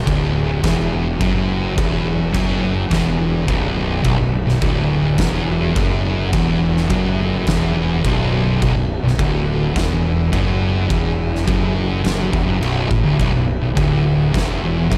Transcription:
Already playing: D3 F#3 B3
0.06 D1 D2, kick, crash
0.63 E1 E2, kick, snare, crash
1.19 F#1 F#2, kick, crash
1.76 E1 E2, kick, crash
2.33 F#1 F#2, kick, crash
2.90 E1 E2, kick, snare, crash
3.47 B0 B1, kick, crash
4.03 B0 B1, kick, crash
4.18 B0 B1
4.46 B0 B1, snare
4.60 D1 D2, kick, crash
5.18 E1 E2, kick, snare, crash
5.75 F#1 F#2, kick, crash
6.32 E1 E2, kick, crash
6.77 snare
6.89 F#1 F#2, kick, crash
7.47 E1 E2, kick, snare, crash
8.04 B0 B1, kick, crash
8.62 B0 B1 E3, kick, crash
8.75 B0 B1
9.03 B0 B1
9.08 snare
9.19 D1 D2, kick, crash
9.75 E1 E2, kick, snare, crash
10.32 F#1 F#2, kick, crash
10.88 E1 E2, kick, crash
11.36 snare
11.45 F#1 F#2, kick, crash
12.03 F#1 F#2, snare, crash
12.32 E1 E2, kick
12.45 F#1 F#2
12.61 B0 B1, crash
12.90 A1 A2, kick
13.05 D1 D2
13.19 B0 B1, kick, crash
13.33 B0 B1
13.62 B0 B1
13.77 D1 D2, kick, crash
14.33 E1 E2, kick, snare, crash
14.90 F#1 F#2, kick, crash

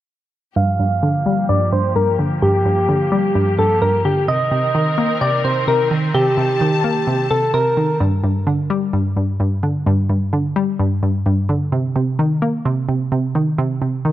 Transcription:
0.56 G2 F3 A#3 G4 F5
0.80 G2
1.03 D3
1.26 G3
1.49 G2 D5
1.72 G2 C5
1.96 G2 A#4
2.19 D3
2.42 G2 G4
2.65 G2
2.89 D3
3.12 G3
3.35 G2
3.59 G2 A4
3.82 G2 A#4
4.05 D3 G4
4.28 C3 D#3 C4 A#4 D#5
4.51 C3
4.75 D#3
4.98 A#3
5.21 C3 D5
5.44 C3 C5
5.68 C3 A#4
5.91 D#3
6.14 C3 G4 A5
6.37 C3
6.61 D#3
6.84 A#3
7.07 C3
7.31 C3 A4
7.54 C3 A#4
7.77 D#3
8.00 G2
8.24 G2
8.47 D3
8.70 G3
8.93 G2
9.17 G2
9.40 G2
9.63 D3
9.86 G2
10.10 G2
10.33 D3
10.56 G3
10.79 G2
11.03 G2
11.26 G2
11.49 D3
11.72 C3
11.96 C3
12.19 D#3
12.42 A#3
12.65 C3
12.89 C3
13.12 C3
13.35 D#3
13.58 C3
13.82 C3
14.05 D#3

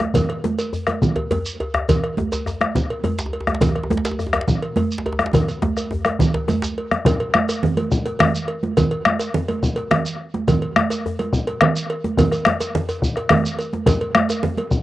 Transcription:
0.00 bombo rim, djembe slap, djembe tone, high conga
0.14 bombo low, cowbell, djembe bass, low conga, shekere
0.29 bombo rim, cowbell
0.44 djembe slap, djembe tone, high conga
0.59 cowbell, shekere
0.73 djembe bass, shekere
0.87 bombo rim, cowbell, djembe slap, djembe tone, high conga
1.02 bombo low, low conga, shekere
1.16 cowbell, djembe tone
1.31 cowbell, djembe slap, djembe tone, high conga, djembe bass
1.46 shekere
1.60 cowbell, djembe tone
1.74 bombo rim, djembe slap, djembe tone
1.89 bombo low, cowbell, djembe tone, djembe bass, low conga, shekere
2.04 bombo rim, cowbell
2.17 djembe slap, high conga, djembe tone
2.32 cowbell, djembe tone, shekere
2.46 bombo rim, djembe tone, djembe bass, shekere
2.61 bombo rim, djembe slap, djembe tone, high conga
2.75 bombo low, djembe tone, low conga, shekere
2.90 cowbell
3.04 cowbell, djembe slap, high conga, djembe tone, djembe bass
3.19 djembe slap, shekere
3.26 djembe tone
3.33 cowbell
3.40 djembe tone
3.47 bombo rim, djembe slap, high conga, djembe tone
3.55 djembe slap
3.61 bombo low, cowbell, djembe slap, low conga, djembe bass, shekere
3.69 djembe tone
3.75 bombo rim, cowbell
3.83 djembe tone
3.90 djembe slap, high conga, djembe tone
3.97 djembe slap
4.05 cowbell, djembe slap, shekere
4.11 djembe tone
4.19 bombo rim, djembe bass, shekere
4.27 djembe tone
4.33 bombo rim, cowbell, djembe slap, high conga, djembe tone
4.41 djembe slap
4.48 bombo low, djembe slap, low conga, shekere
4.62 cowbell
4.76 cowbell, djembe slap, high conga, djembe tone, djembe bass
4.92 shekere
4.98 djembe slap
5.06 cowbell, djembe tone
5.12 djembe tone
5.19 bombo rim, djembe slap, high conga, djembe tone
5.26 djembe slap
5.33 bombo low, cowbell, high conga, djembe tone, low conga, djembe bass, shekere
5.48 cowbell, shekere
5.62 bombo rim, djembe slap, djembe tone, high conga
5.77 bombo rim, cowbell, shekere
5.91 djembe tone, djembe bass
6.05 bombo rim, cowbell, djembe slap, high conga, djembe tone
6.19 bombo low, djembe tone, low conga, shekere
6.34 cowbell, djembe tone
6.48 cowbell, djembe slap, djembe tone, high conga, djembe bass, shekere
6.62 djembe slap, shekere
6.78 cowbell
6.91 bombo rim, djembe slap, djembe tone, high conga
7.05 bombo low, cowbell, djembe slap, djembe bass, low conga, shekere
7.20 cowbell
7.34 bombo rim, djembe slap, djembe tone, high conga
7.49 bombo rim, cowbell, djembe slap, shekere
7.63 low conga, djembe bass
7.77 cowbell, high conga, djembe tone
7.91 bombo low, shekere
8.06 cowbell, djembe slap
8.19 bombo rim, cowbell, high conga, djembe tone, low conga, djembe bass
8.35 high conga, shekere
8.48 cowbell
8.63 djembe slap, high conga, djembe tone
8.77 bombo low, cowbell, djembe slap, low conga, djembe bass, shekere
8.91 cowbell
9.05 bombo rim, djembe slap, djembe tone, high conga
9.19 bombo rim, cowbell, djembe slap, shekere
9.34 low conga, djembe bass
9.48 cowbell, high conga, djembe tone
9.63 bombo low, shekere
9.76 cowbell, djembe slap
9.91 bombo rim, cowbell, high conga, djembe tone, low conga
10.05 high conga, shekere
10.34 djembe slap, high conga, djembe tone
10.48 bombo low, cowbell, djembe slap, low conga, djembe bass, shekere
10.62 cowbell
10.76 bombo rim, djembe slap, high conga, djembe tone
10.90 bombo rim, cowbell, djembe slap, shekere
11.06 djembe bass
11.19 cowbell, high conga, djembe tone
11.33 bombo low, shekere
11.47 cowbell, djembe slap
11.61 bombo rim, cowbell, high conga, low conga
11.76 high conga, shekere
11.90 cowbell
12.04 djembe slap, high conga, djembe tone
12.17 bombo low, cowbell, low conga, djembe bass, shekere
12.32 bombo rim, cowbell, djembe slap, high conga, shekere
12.45 bombo rim, djembe slap, high conga, djembe tone
12.60 cowbell, djembe slap, high conga, shekere
12.75 djembe bass, low conga
12.89 cowbell, djembe tone, shekere
13.02 bombo low, shekere
13.16 bombo rim, cowbell, djembe slap
13.29 bombo rim, cowbell, high conga, djembe tone, low conga, djembe bass
13.44 bombo rim, djembe slap, high conga, shekere
13.58 cowbell, high conga, shekere
13.73 djembe slap, high conga, djembe tone
13.86 bombo low, cowbell, djembe slap, low conga, djembe bass, shekere
14.01 cowbell
14.15 bombo rim, djembe slap, high conga, djembe tone
14.29 bombo rim, cowbell, djembe slap, shekere
14.43 low conga, djembe bass
14.57 cowbell, high conga, djembe tone
14.71 bombo low, shekere

